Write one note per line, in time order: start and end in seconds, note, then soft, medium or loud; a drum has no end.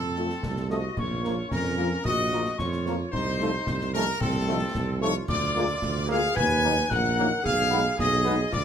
0.00 0.34 F2 medium
0.00 0.66 C4 medium
0.00 0.66 A4 loud
0.00 0.70 A5 medium
0.16 0.27 F3 medium
0.16 0.27 A3 medium
0.16 0.27 C4 medium
0.16 0.27 F4 medium
0.16 snare medium
0.30 snare medium
0.43 0.89 C2 medium
0.43 concert bass drum medium
0.43 snare medium
0.57 snare medium
0.69 0.79 F3 medium
0.69 0.79 A3 medium
0.69 0.81 A3 medium
0.69 0.81 C4 medium
0.69 0.81 F4 medium
0.69 0.97 F#4 medium
0.69 0.97 D#5 loud
0.69 0.77 D#6 medium
0.69 snare medium
0.96 1.42 A#1 medium
0.96 1.51 F4 medium
0.96 1.52 C#5 medium
0.96 1.48 C#6 medium
0.96 concert bass drum medium
0.96 crash soft
1.23 1.33 F3 medium
1.23 1.34 F3 medium
1.23 1.33 A#3 medium
1.23 1.34 A#3 medium
1.23 1.34 F4 medium
1.23 snare medium
1.50 1.96 F2 medium
1.50 2.01 C#4 medium
1.50 2.02 A#4 loud
1.50 2.02 A#5 medium
1.50 concert bass drum medium
1.50 snare medium
1.65 snare medium
1.77 1.87 F3 medium
1.77 1.88 F3 medium
1.77 1.87 A#3 medium
1.77 1.88 A#3 medium
1.77 1.88 F4 medium
1.77 snare medium
2.04 2.50 A#1 medium
2.04 2.55 F#4 loud
2.04 2.55 D#5 loud
2.04 2.55 D#6 loud
2.04 concert bass drum medium
2.04 snare medium
2.30 2.41 F3 medium
2.30 2.42 F3 medium
2.30 2.40 A#3 medium
2.30 2.42 A#3 medium
2.30 2.42 F4 medium
2.30 snare medium
2.45 snare medium
2.58 3.04 F2 medium
2.58 3.13 F4 medium
2.58 3.13 C#5 medium
2.58 2.91 C#6 medium
2.58 concert bass drum medium
2.58 snare medium
2.72 snare medium
2.86 2.95 F3 medium
2.86 2.96 F3 medium
2.86 2.95 A#3 medium
2.86 2.96 A#3 medium
2.86 2.96 F4 medium
2.86 snare medium
3.11 3.58 C2 medium
3.11 3.90 D#4 loud
3.11 3.89 C5 loud
3.11 3.90 C6 loud
3.11 concert bass drum medium
3.39 3.49 F3 medium
3.39 3.50 F3 medium
3.39 3.50 A3 medium
3.39 3.50 D#4 medium
3.39 snare medium
3.67 4.12 C2 medium
3.67 concert bass drum medium
3.67 snare medium
3.81 snare medium
3.93 4.04 F3 medium
3.93 4.04 A3 medium
3.93 4.06 C#4 medium
3.93 4.04 D#4 medium
3.93 4.19 A#4 loud
3.93 4.23 A#5 medium
3.93 snare medium
4.20 4.66 C2 medium
4.20 4.98 C4 loud
4.20 4.98 A4 loud
4.20 5.01 A5 loud
4.20 concert bass drum medium
4.20 snare medium
4.47 4.57 F3 medium
4.47 4.58 F3 medium
4.47 4.57 A3 medium
4.47 4.58 A3 medium
4.47 4.58 D#4 medium
4.75 5.20 C2 loud
4.75 concert bass drum medium
4.75 snare medium
5.00 5.10 F3 medium
5.00 5.12 F3 medium
5.00 5.10 A3 medium
5.00 5.12 A3 medium
5.00 5.12 D#4 medium
5.00 5.27 F4 loud
5.00 5.14 C#5 loud
5.00 5.08 C#6 loud
5.28 5.74 D2 medium
5.28 6.05 F4 medium
5.28 6.06 D5 loud
5.28 6.06 D6 loud
5.28 concert bass drum medium
5.28 crash medium
5.55 5.65 G#3 medium
5.55 5.66 G#3 medium
5.55 5.65 A#3 medium
5.55 5.66 A#3 medium
5.55 5.66 F4 medium
5.55 snare medium
5.82 6.28 D2 loud
5.82 concert bass drum medium
5.82 snare medium
5.96 snare medium
6.08 6.18 G#3 medium
6.08 6.20 G#3 medium
6.08 6.19 A#3 medium
6.08 6.21 A#3 medium
6.08 6.21 F4 medium
6.08 6.36 G#4 loud
6.08 6.37 F5 loud
6.08 6.17 F6 loud
6.08 snare medium
6.35 6.82 D#2 medium
6.35 6.86 B4 loud
6.35 6.91 G#5 loud
6.35 6.91 G#6 loud
6.35 concert bass drum medium
6.35 snare medium
6.62 6.72 F#3 loud
6.62 6.74 F#3 medium
6.62 6.72 A#3 medium
6.62 6.74 A#3 medium
6.62 6.74 D#4 medium
6.62 snare medium
6.77 snare medium
6.90 7.31 A#1 loud
6.90 7.44 A#4 loud
6.90 7.45 F#5 loud
6.90 7.44 F#6 loud
6.90 concert bass drum medium
6.90 snare medium
7.04 snare medium
7.17 7.27 F#3 medium
7.17 7.29 F#3 medium
7.17 7.27 A#3 loud
7.17 7.29 A#3 medium
7.17 7.29 D#4 medium
7.17 snare medium
7.43 7.89 B1 loud
7.43 7.94 G#4 loud
7.43 7.95 F5 loud
7.43 7.95 F6 loud
7.43 concert bass drum medium
7.71 7.80 G#3 medium
7.71 7.82 G#3 medium
7.71 7.81 B3 loud
7.71 7.82 B3 medium
7.71 7.82 D#4 medium
7.71 snare medium
7.96 8.44 B1 loud
7.96 8.48 G#4 loud
7.96 8.50 D#5 loud
7.96 8.49 D#6 loud
7.96 concert bass drum medium
7.96 snare medium
8.12 snare medium
8.24 8.34 G#3 medium
8.24 8.36 G#3 medium
8.24 8.34 B3 medium
8.24 8.36 B3 medium
8.24 8.36 D#4 medium
8.24 snare medium
8.51 8.64 D2 medium
8.51 8.64 F4 medium
8.51 8.64 D5 loud
8.51 8.64 D6 loud
8.51 concert bass drum medium
8.51 snare medium